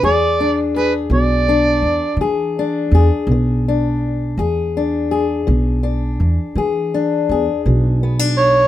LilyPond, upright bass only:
\new Staff \with { instrumentName = "Upright bass" } { \clef bass \time 12/8 \key e \mixolydian \tempo 4. = 55 e,4. b,,4 e,16 r16 e4 e,16 r16 b,,4. | e,4. b,,4 e,16 r16 e4 e,16 r16 b,,4. | }